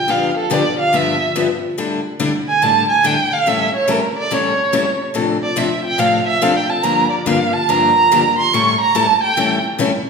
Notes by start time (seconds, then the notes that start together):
Already playing: G5
0.08 G2 D3 F3 B3 D4 G4 F5
0.37 A4
0.50 G2 D3 F3 B3 D4 G4 D5
0.80 F5
0.93 G2 D3 F3 B3 D4 G4 E5
1.36 G2 D3 F3 B3 D4 G4
1.78 A2 D3 G3 D4 E4 A4
2.20 A2 D3 G3 D4 E4 A4
2.49 G#5
2.62 A2 D3 G3 D4 E4 A4 A5
2.90 G#5
3.03 A2 D3 G3 D4 E4 A4 G5
3.33 F5
3.46 A2 E3 G3 C#4 E4 A4 E5
3.75 C#5
3.88 A2 E3 G3 C#4 E4 A4 A#4
4.17 D5
4.31 A2 E3 G3 C#4 E4 A4 C#5
4.73 A2 E3 G3 C#4 E4 A4
5.14 A2 C3 F3 C4 D4 A4
5.43 D5
5.56 A2 C3 F3 C4 D4 A4 E5
5.85 G5
5.98 A2 C3 F3 C4 D4 A4 F5
6.27 E5
6.42 A2 C3 F3 C4 D4 A4 F5
6.57 G5
6.70 A5
6.83 G2 D3 F3 A#3 D4 G4 A#5
7.11 D5
7.26 G2 D3 F3 A#3 D4 G4 F5
7.53 A5
7.69 G2 D3 F3 A#3 D4 G4 A#5
8.11 G2 D3 F3 A#3 D4 G4
8.39 C6
8.53 A2 E3 G3 C#4 E4 A4 C#6
8.81 A#5
8.95 A2 E3 G3 C#4 E4 A4 A5
9.23 G5
9.37 A2 E3 G3 C#4 E4 A4
9.78 A2 E3 G3 C#4 E4 A4